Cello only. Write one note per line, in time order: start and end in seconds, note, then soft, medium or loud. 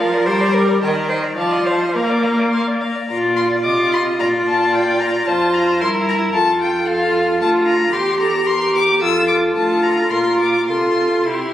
0.00 0.28 A#4 loud
0.26 0.55 C5 medium
0.54 0.81 A#4 medium
0.81 1.09 A#4 medium
1.09 1.17 C5 medium
1.37 1.68 D5 medium
1.66 1.97 C5 medium
1.95 2.53 A#4 medium
3.10 3.67 A#2 soft
3.65 4.22 C3 soft
4.20 5.27 A#2 soft
5.27 5.83 F2 soft
5.81 6.34 G2 medium
6.34 7.42 F2 medium
7.40 7.92 D2 medium
7.93 9.03 E2 medium
9.01 9.55 F2 medium
9.56 10.08 D2 medium
10.12 10.70 A#2 soft
10.68 11.25 C3 soft
11.26 11.54 C3 soft